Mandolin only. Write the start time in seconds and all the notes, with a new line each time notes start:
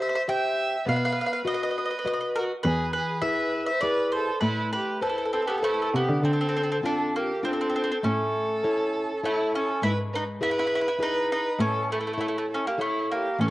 0.02 E5
0.09 E5
0.15 E5
0.29 G5
0.89 F5
0.96 F5
1.05 F5
1.12 F5
1.21 F5
1.26 F5
1.33 F5
1.47 D#5
1.54 D#5
1.63 D#5
1.71 D#5
1.78 D#5
1.85 D#5
1.91 D#5
1.99 D#5
2.07 D#5
2.13 D#5
2.21 D#5
2.36 A#4
2.63 B4
2.93 B4
3.22 E5
3.66 E5
3.81 D5
4.12 C5
4.40 B4
4.72 B4
5.02 A4
5.09 A4
5.18 A4
5.25 A4
5.33 C4 A4
5.42 A4
5.47 B3 A4
5.58 A4
5.64 A3 A4
5.74 A4
5.82 A4
5.96 B3
6.25 C4
6.33 C4
6.41 C4
6.49 C4
6.57 C4
6.63 C4
6.72 C4
6.86 D4
7.16 A#3
7.45 C4
7.53 C4
7.61 C4
7.70 C4
7.76 C4
7.84 C4
7.92 C4
8.04 C#4
9.25 A3
9.55 C#4
9.83 E4
10.15 D#4
10.43 E4
10.51 E4
10.59 E4
10.67 E4
10.75 E4
10.81 E4
10.88 E4
11.03 D#4
11.32 D#4
11.60 C#4
11.92 A3
12.07 A3
12.13 A3
12.21 A3
12.28 A3
12.38 A3
12.54 C#4
12.67 A#3
12.81 A3
13.12 A#3
13.41 C#4